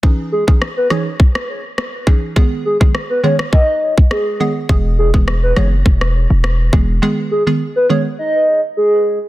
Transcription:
<<
  \new Staff \with { instrumentName = "Soft synth lead" } { \time 4/4 \key gis \minor \tempo 4 = 103 r8 gis'16 r8 b'16 cis''16 r2 r16 | r8 gis'16 r8 b'16 cis''16 r16 dis''8. r16 gis'8. r16 | r8 gis'16 r8 b'16 cis''16 r2 r16 | r8 gis'16 r8 b'16 cis''16 r16 dis''8. r16 gis'8. r16 | }
  \new Staff \with { instrumentName = "Synth pluck" } { \time 4/4 \key gis \minor <e cis' dis' gis'>8. <e cis' dis' gis'>16 r8 <e cis' dis' gis'>16 r4. r16 <e cis' dis' gis'>8 | <dis gis b gis'>8. <dis gis b gis'>16 r8 <dis gis b gis'>16 r4. r16 <dis gis b gis'>8 | <e gis b gis'>8. <e gis b gis'>16 r8 <e gis b gis'>16 r4. r16 <e gis b gis'>8 | <dis gis b gis'>8. <dis gis b gis'>16 r8 <dis gis b gis'>16 r2 r16 | }
  \new Staff \with { instrumentName = "808-style bass" } { \clef bass \time 4/4 \key gis \minor r1 | r1 | e,,4. fis,,8 e,,8. e,,8. e,,8 | r1 | }
  \new DrumStaff \with { instrumentName = "Drums" } \drummode { \time 4/4 bd8. bd16 ss8 ss8 bd16 ss8. ss8 bd8 | bd8. bd16 ss8. ss16 bd8. bd16 ss4 | bd8. bd16 ss8 ss8 bd16 ss8. ss8 bd8 | r4 r4 r4 r4 | }
>>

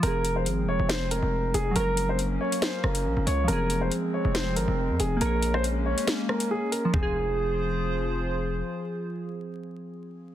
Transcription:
<<
  \new Staff \with { instrumentName = "Grand piano" } { \time 4/4 \key f \phrygian \tempo 4 = 139 bes'8. c''16 r8 des''8 c''8 bes'4 aes'8 | bes'8. c''16 r8 des''8 c''8 bes'4 des''8 | bes'8. c''16 r8 des''8 c''8 bes'4 aes'8 | bes'8. c''16 r8 des''8 r8 bes'8 aes'8 bes'8 |
aes'2. r4 | r1 | }
  \new Staff \with { instrumentName = "Synth keys" } { \time 4/4 \key f \phrygian <f c' aes'>1 | <ges des' bes'>1 | <f c' aes'>1 | <bes aes' des''>1 |
<f c' aes'>1~ | <f c' aes'>1 | }
  \new Staff \with { instrumentName = "Analog synth pad" } { \time 4/4 \key f \phrygian <f aes c'>1 | <ges bes des'>1 | <f aes c'>1 | <aes bes des'>1 |
<f f' aes' c''>1~ | <f f' aes' c''>1 | }
  \new Staff \with { instrumentName = "808-style bass" } { \clef bass \time 4/4 \key f \phrygian f,,4 aes,,16. f,,16. f,,4 f,,8. f,,8 | ges,,4. r4 ges,,8 bes,,16 ges,,16 des,8 | f,,4 r8. f,,8. aes,,16 f,,8 f,16 f,,8 | bes,,4.~ bes,,16 r2 r16 |
f,,1 | r1 | }
  \new DrumStaff \with { instrumentName = "Drums" } \drummode { \time 4/4 hh8 hh8 hh4 <hh sn>8 hh8 r8 hh8 | hh8 hh8 hh8. hh16 <hh sn>8 ss16 hh16 r8 hh8 | hh8 hh8 hh4 <hh sn>8 hh8 r8 hh8 | hh8 hh16 ss16 hh8. hh16 <hh sn>8 ss16 hh16 r8 hh8 |
<bd tomfh>4 r4 r4 r4 | r4 r4 r4 r4 | }
>>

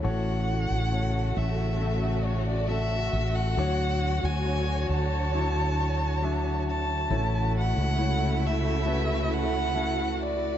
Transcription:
<<
  \new Staff \with { instrumentName = "Violin" } { \time 4/4 \key a \major \tempo 4 = 68 fis''4. e''4 cis''16 d''16 e''8. fis''16~ | fis''8. gis''8. a''2 a''8~ | a''8 fis''4 e''4 fis''4 d''8 | }
  \new Staff \with { instrumentName = "Cello section" } { \time 4/4 \key a \major r1 | r1 | e'1 | }
  \new Staff \with { instrumentName = "Grand piano" } { \time 4/4 \key a \major << { e'16 r2. r8. | r1 | r1 | } \\ { <a fis' cis''>4 <a fis' cis''>4 <a fis' e''>4 <a fis' a'>4 | <fis d' cis''>4 <fis d' cis''>4 <fis d' e'>4 <fis d' e''>4 | <a e' fis' cis''>4 <a e' fis' cis''>4 <a e' fis' b'>4 <a e' fis' e''>4 | } >> }
  \new Staff \with { instrumentName = "Grand piano" } { \clef bass \time 4/4 \key a \major <a, e>4. r2 r8 | a,4. r2 r8 | <a, e>4. r2 r8 | }
  \new Staff \with { instrumentName = "String section" } { \time 4/4 \key a \major << { fis'1~ | fis'1 | fis'1 | } \\ { <cis a>1 | <d cis''>1 | <cis a>1 | } >> }
  \new Staff \with { instrumentName = "Fretless electric bass" } { \clef bass \time 4/4 \key a \major a,,8. a,,8. a,,2 a,,8 | d,8. d,8. d,2~ d,8 | a,,8. cis,2.~ cis,16 | }
>>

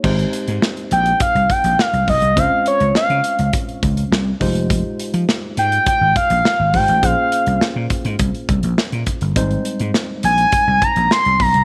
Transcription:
<<
  \new Staff \with { instrumentName = "Analog synth lead" } { \time 4/4 \key aes \major \tempo 4 = 103 r4. g''8 f''8 g''8 f''8 ees''8 | f''8 des''8 f''4 r2 | r4. g''8 g''8 f''4 g''8 | f''4 r2. |
r4. aes''4 bes''8 c'''8 bes''8 | }
  \new Staff \with { instrumentName = "Tine electric piano" } { \time 4/4 \key aes \major <aes c' ees' g' c''>1 | <aes c' des' f' c''>2.~ <aes c' des' f' c''>8 <aes ees' f' g' c''>8~ | <aes ees' f' g' c''>2.~ <aes ees' f' g' c''>8 <aes ees' f' g' c''>8 | <bes des' f' aes' c''>1 |
<g aes c' ees' c''>1 | }
  \new Staff \with { instrumentName = "Slap bass" } { \clef bass \time 4/4 \key aes \major aes,,8 r16 aes,16 r8 bes,,8 r16 c,16 r16 bes,,16 r16 c,16 ces,16 c,16 | des,16 r8 des,16 r16 des16 r16 des,16 r8 des,8 c,8 f,,8~ | f,,8 r16 f16 r8 aes,8 r16 aes,,16 r16 bes,,16 r16 aes,,16 aes,,16 a,,16 | bes,,16 r8 c,16 r16 bes,16 r16 aes,16 c,16 r16 c,16 bes,,16 r16 bes,16 r16 g,,16 |
aes,,8 r16 aes,16 r8 bes,,8 r16 c,16 r16 bes,,16 r16 c,16 ces,16 c,16 | }
  \new DrumStaff \with { instrumentName = "Drums" } \drummode { \time 4/4 <cymc bd>16 hh16 hh16 hh16 sn16 hh16 hh16 hh16 <hh bd>16 hh16 <hh bd>16 hh16 sn16 hh16 <hho bd>16 hh16 | <hh bd>8 hh16 hh16 sn16 hh16 hh16 hh16 <hh bd>16 hh16 <hh bd>16 hh16 sn8 <hho bd>16 hh16 | <hh bd>8 hh16 hh16 sn8 hh16 hh16 <hh bd>8 <hh bd>16 hh16 sn8 <hho bd>16 hh16 | <hh bd>8 hh16 hh16 sn8 <hh bd>16 hh16 <hh bd>16 hh16 <hh bd>16 hh16 sn16 hh16 <hh bd>16 hh16 |
<hh bd>16 hh16 hh16 hh16 sn8 hh16 hh16 <hh bd>8 <hh bd>16 hh16 sn16 hh16 <hho bd>16 hh16 | }
>>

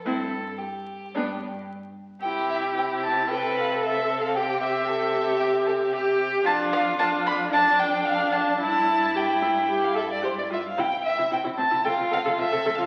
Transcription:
<<
  \new Staff \with { instrumentName = "Violin" } { \time 4/4 \key c \major \tempo 4 = 112 a'4 g'2 r4 | g''8 e''8 g''8 a''8 g''8 f''8 \tuplet 3/2 { e''4 f''8 } | g''8 e''2. r8 | a''8 f''8 a''8 b''8 a''8 g''8 f''8 a''8 |
a''4 g''4~ g''16 f''16 e''16 d''16 c''16 d''16 e''16 f''16 | g''8 e''8 g''8 a''8 g''8 f''8 \tuplet 3/2 { e''4 f''8 } | }
  \new Staff \with { instrumentName = "Violin" } { \time 4/4 \key c \major e'8 r4. d'8 r4. | g'2 b'4 a'4 | g'4 a'4 g'8 a'8 g'4 | f'2 d'2 |
e'2.~ e'8 r8 | r2 f'4 a'4 | }
  \new Staff \with { instrumentName = "Viola" } { \time 4/4 \key c \major c'8 r4. b8 r4. | e'4 e'4 a'2 | g'1 | d'4 d'4 d'4 d'4 |
e'4 g'8 e'8 g'8 a'8 g'8 f'8 | e'16 r8 e'16 e'16 e'16 c'16 e'16 a'16 f'16 a'16 a'16 f'16 a'16 a'16 f'16 | }
  \new Staff \with { instrumentName = "Cello" } { \clef bass \time 4/4 \key c \major g,8. r4 r16 g,8. r4 r16 | c1~ | c1 | f,1 |
g,2.~ g,8. r16 | c16 r8 c16 c16 c16 c16 c16 c16 c16 c16 c16 c16 c16 c16 c16 | }
>>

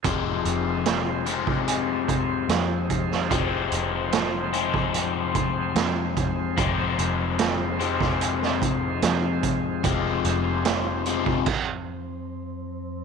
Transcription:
<<
  \new Staff \with { instrumentName = "Tonewheel organ" } { \time 4/4 \key f \minor \tempo 4 = 74 <ees' f' aes' c''>1~ | <ees' f' aes' c''>1~ | <ees' f' aes' c''>1~ | <ees' f' aes' c''>2 r2 | }
  \new Staff \with { instrumentName = "Overdriven electric guitar" } { \clef bass \time 4/4 \key f \minor <f, c f aes c'>4. <f, c f aes c'>2~ <f, c f aes c'>8 | <f, c f aes c'>4. <f, c f aes c'>2~ <f, c f aes c'>8 | <f, c f aes c'>4. <f, c f aes c'>2~ <f, c f aes c'>8 | <f, c f aes c'>4. <f, c f aes c'>8 r2 | }
  \new Staff \with { instrumentName = "Synth drone" } { \clef bass \time 4/4 \key f \minor f,1~ | f,1~ | f,1~ | f,1 | }
  \new Staff \with { instrumentName = "Fingered electric bass" } { \clef bass \time 4/4 \key f \minor f,,8 f,,2 r8 f,4 | f,,8 f,,2 r8 f,4 | f,,8 f,,2 r8 f,4 | f,,8 f,,4. r2 | }
  \new DrumStaff \with { instrumentName = "Drums" } \drummode { \time 4/4 <hh bd>8 hh8 <hh sn>8 hh16 bd16 hh8 <hh bd>8 <hh sn>8 <hh bd>16 sn16 | <hh bd>8 hh8 <hh sn>8 hh16 bd16 hh8 <hh bd>8 <hh sn>8 <hh bd>8 | <hh bd>8 hh8 <hh sn>8 hh16 <bd sn>16 hh16 sn16 <hh bd>8 <hh sn>8 <hh bd>8 | <hh bd>8 hh8 <hh sn>8 hh16 bd16 <cymc bd>4 r4 | }
>>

